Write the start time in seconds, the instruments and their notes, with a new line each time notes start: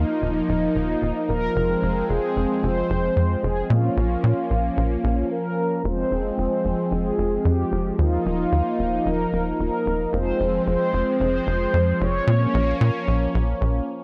Already playing: analog synth pad F3 A#3 D#4, analog polysynth D#4
0.22 analog synth bass D#1
0.48 analog synth bass D#1, analog polysynth D#4
0.75 analog synth bass D#1
1.02 analog synth bass D#1
1.28 analog synth bass D#1, analog polysynth A#4
1.56 analog synth bass F1, analog synth pad G#3 C4
1.82 analog synth bass F1
2.09 analog synth bass F1, analog polysynth G#4
2.36 analog synth bass F1
2.63 analog synth bass F1, analog polysynth C5
2.90 analog synth bass F1
3.16 analog synth bass F2
3.43 analog synth bass F1, analog polysynth G#4
3.70 analog synth bass A#2, analog synth pad A#3 C#4, analog polysynth F4
3.97 analog synth bass A#1
4.24 analog synth bass A#2
4.50 analog synth bass A#1
4.77 analog synth bass A#1
5.04 analog synth bass A#1
5.31 analog polysynth A#4
5.84 analog synth bass F1, analog synth pad F3 G#3 C4, analog polysynth C5
6.11 analog synth bass F1
6.38 analog synth bass F1, analog polysynth C5
6.65 analog synth bass F1
6.91 analog synth bass F1, analog polysynth G#4
7.18 analog synth bass F1
7.45 analog synth bass F2, analog polysynth G4
7.72 analog synth bass F1
7.99 analog synth bass D#2, analog synth pad A#3 D#4, analog polysynth F4
8.25 analog synth bass D#1, analog polysynth F4
8.52 analog synth bass D#2
8.79 analog synth bass D#1
9.06 analog synth bass D#1, analog polysynth A#4
9.32 analog synth bass D#1
9.59 analog synth bass D#1, analog polysynth A#4
9.86 analog synth bass D#1
10.13 analog synth bass F1, analog synth pad F3 G#3 C4, analog polysynth C5
10.40 analog synth bass F1
10.67 analog synth bass F1, analog polysynth C5
10.93 analog synth bass F1
11.20 analog synth bass F1, analog polysynth C5
11.47 analog synth bass F1
11.74 analog synth bass F2
12.00 analog synth bass F1, analog polysynth C#5
12.27 analog synth bass A#2, analog synth pad A#3 C#4
12.54 analog synth bass A#1
12.81 analog synth bass A#2
13.08 analog synth bass A#1
13.35 analog synth bass A#1
13.61 analog synth bass A#1